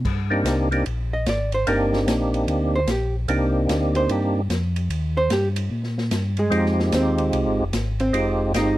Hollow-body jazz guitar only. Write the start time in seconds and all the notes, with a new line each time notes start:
1.13 D#5
1.29 D5
1.54 C5
1.70 A#4
2.75 C5
2.91 G4
3.96 C5
4.11 G4
5.17 C5
5.32 G4
6.39 G#3 G#4
6.94 C4 C5
8.00 C4 C5
8.57 D#4 D#5